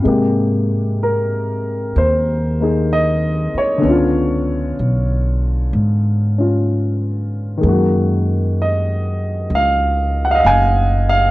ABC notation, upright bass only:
X:1
M:4/4
L:1/8
Q:"Swing" 1/4=64
K:Ab
V:1 name="Upright bass" clef=bass
A,,4 E,,3 z | D,,2 _C,,2 A,,4 | _G,,4 D,,2 _G,,,2 |]